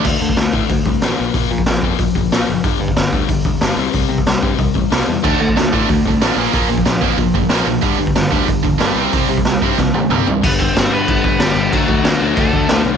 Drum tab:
CC |x---------------|----------------|----------------|----------------|
HH |----o---o---o---|o---o---o---o---|o---o---o---o---|o---o---o---o---|
SD |----o-------o---|----o-------o---|----o-------o---|----o-------o---|
T1 |----------------|----------------|----------------|----------------|
T2 |----------------|----------------|----------------|----------------|
FT |----------------|----------------|----------------|----------------|
BD |o--o--o-o-o-----|o--o--o-o-o-----|o--o--o-o-o-----|o--o--o-o-o-----|

CC |x---------------|----------------|----------------|----------------|
HH |----o---o---o---|o---o---o---o---|o---o---o---o---|o---o-----------|
SD |----o-------o---|----o-------o---|----o-------o---|----o---o-------|
T1 |----------------|----------------|----------------|----------o-----|
T2 |----------------|----------------|----------------|------------o---|
FT |----------------|----------------|----------------|--------------o-|
BD |o--o--o-o-o-----|o--o--o-o-o-----|o--o--o-o-o-----|o--o--o-o-------|

CC |x---x---x---x---|x---x---x---x---|
HH |----------------|----------------|
SD |----o-------o---|----o-------o---|
T1 |----------------|----------------|
T2 |----------------|----------------|
FT |----------------|----------------|
BD |o-o-----o-o-----|o-o-----o-o-----|